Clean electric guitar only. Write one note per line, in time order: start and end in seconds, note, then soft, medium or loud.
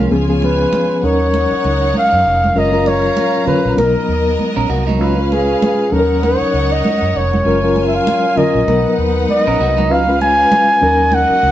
4.56 4.69 C#4 medium
4.56 4.69 A#4 medium
4.70 4.87 A#3 medium
4.70 4.86 F#4 medium
4.87 5.17 F#3 medium
4.87 5.16 D#4 medium
9.47 9.59 C#4 medium
9.47 9.59 A#4 medium
9.61 9.77 A#3 medium
9.61 9.76 F#4 medium
9.77 10.06 F#3 medium
9.77 10.06 D#4 medium